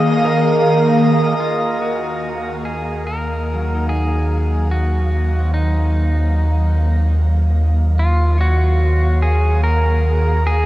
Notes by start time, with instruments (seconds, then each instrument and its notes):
Already playing: analog synth pad D#3 A#3 G#4 F5, pedal steel guitar D#5, synth texture D#5 D#6
0.25 harp A#4
1.39 sub bass D#2, pedal steel guitar F4
1.82 pedal steel guitar F#4
2.65 pedal steel guitar G#4
3.07 pedal steel guitar A#4
3.35 analog synth pad F#3
3.53 harp F#3
3.74 harp D#4
3.89 pedal steel guitar G#4
4.71 pedal steel guitar F#4
5.39 harp C4
5.54 pedal steel guitar D#4
7.99 pedal steel guitar F4
8.38 pedal steel guitar F#4, harp C#5
9.22 pedal steel guitar G#4
9.55 analog synth pad G#4
9.64 pedal steel guitar A#4
10.47 pedal steel guitar G#4